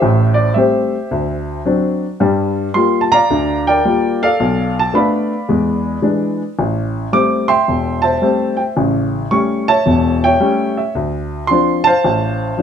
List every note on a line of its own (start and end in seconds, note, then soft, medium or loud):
0.00 0.49 A1 medium
0.00 0.49 A2 medium
0.00 0.57 G4 medium
0.00 0.57 C5 medium
0.00 0.33 E5 medium
0.34 0.53 D5 medium
0.54 0.95 G3 soft
0.54 0.95 A3 soft
0.54 0.95 C4 medium
0.54 1.08 G4 soft
0.54 1.97 E5 medium
0.58 1.99 C5 soft
1.11 1.59 D2 medium
1.65 2.04 F#3 soft
1.65 2.04 C4 soft
1.65 2.05 D4 medium
2.20 2.68 G2 medium
2.20 2.68 G3 medium
2.74 3.13 G3 soft
2.74 3.14 A#3 soft
2.74 3.14 F4 medium
2.74 3.00 C6 medium
3.01 3.11 A5 medium
3.12 3.67 D5 medium
3.12 4.17 F5 medium
3.12 3.68 A#5 loud
3.30 3.77 D2 medium
3.30 3.77 D3 medium
3.67 4.36 A#4 medium
3.67 4.22 D5 medium
3.67 4.23 G5 medium
3.85 4.23 G3 soft
3.85 4.23 A#3 soft
3.85 4.24 F4 soft
4.23 5.27 A4 medium
4.23 4.94 D5 medium
4.23 4.73 F5 medium
4.40 4.87 B1 medium
4.79 4.96 A5 medium
4.93 5.32 A3 soft
4.93 5.32 B3 soft
4.93 5.32 D4 medium
4.93 6.36 D5 soft
4.93 5.45 F5 soft
4.93 6.36 B5 medium
5.49 5.96 E2 medium
5.49 5.96 G#3 medium
6.02 6.41 E3 soft
6.02 6.41 G#3 soft
6.02 6.42 D4 medium
6.59 7.06 A1 medium
7.13 7.51 G3 soft
7.13 7.51 A3 soft
7.13 7.51 C4 soft
7.13 7.50 D6 medium
7.48 8.02 E5 medium
7.48 8.54 G5 medium
7.48 8.05 C6 medium
7.68 8.15 E1 medium
8.02 8.72 C5 medium
8.02 8.72 E5 medium
8.02 8.59 A5 medium
8.22 8.60 G3 soft
8.22 8.60 A3 soft
8.22 8.61 C4 medium
8.57 8.62 G5 medium
8.77 9.24 A1 medium
8.77 9.24 C#3 medium
9.31 9.70 G3 medium
9.31 9.70 A3 soft
9.31 9.70 C#4 medium
9.31 9.65 C#6 medium
9.68 10.23 C#5 medium
9.68 10.23 E5 medium
9.68 10.24 A5 medium
9.86 10.33 E1 medium
9.86 10.33 E2 medium
10.24 10.92 C#5 medium
10.24 10.76 E5 medium
10.24 10.79 G5 medium
10.40 10.79 G3 medium
10.40 10.79 A3 soft
10.40 10.79 C#4 medium
10.77 10.94 E5 medium
10.95 11.42 D2 medium
11.47 11.88 F3 soft
11.47 11.88 C4 soft
11.47 11.89 D4 medium
11.47 11.86 C6 medium
11.84 12.62 C5 medium
11.84 12.62 F5 medium
11.84 12.62 A5 medium
12.04 12.52 A1 medium
12.57 12.62 F3 soft
12.57 12.62 C4 soft
12.57 12.62 D4 medium